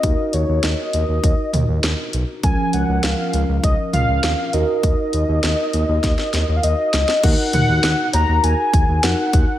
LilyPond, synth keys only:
\new Staff \with { instrumentName = "Synth keys" } { \time 4/4 \key ees \minor \tempo 4 = 100 <ees' ges' bes'>1 | <f des' bes'>2.~ <f des' bes'>8 <ees' ges' bes'>8~ | <ees' ges' bes'>2.~ <ees' ges' bes'>8 r8 | <ees' ges' bes'>2. <ees' ges' bes'>4 | }